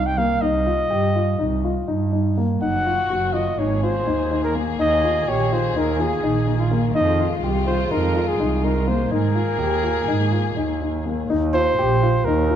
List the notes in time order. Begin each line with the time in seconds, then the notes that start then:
Already playing: C2 D#4
0.06 G5
0.18 A#3 F5
0.42 C2 D#4 D#5
0.66 F4
0.90 G2 G4
1.16 F4
1.39 C2 D#4
1.64 F4
1.88 G2 D#4
2.12 D#4
2.38 A#3
2.61 F#1 D#3 A#3 D#4 F#4 F#5
2.86 F4
3.10 F#1 F#4
3.33 F4 D#5
3.59 G#1 D#4 G#4 C#5
3.83 F4 C5
4.07 D#2 D#4
4.31 D#4
4.44 A#4
4.55 A#3
4.79 D#2 D#4 D#5
5.04 F4
5.28 A#1 G4 C#5
5.52 F4 C5
5.75 D#2 D#4 A#4
5.99 F4 G#4
6.23 A#1 D#4
6.47 D#4
6.59 F4
6.71 A#3
6.95 F2 G#3 D#4 F4 D#5
7.20 F4
7.42 C2 G4
7.67 F4 C5
7.90 F2 D#4 A#4
8.16 F4
8.28 G#4
8.39 C2 D#4
8.64 D#4 A#4
8.88 A#3 C5
9.11 G#2 A#3 D#4 G#4 A#4
9.35 F4
9.59 D#2 G4
9.83 F4
10.07 G#2 D#4
10.32 F4
10.56 D#2 D#4
10.81 D#4
11.06 A#3
11.29 D#2 D#4
11.53 F4 C5
11.78 A#1 G4
12.03 F4
12.25 D#2 D#4 A#4
12.50 F4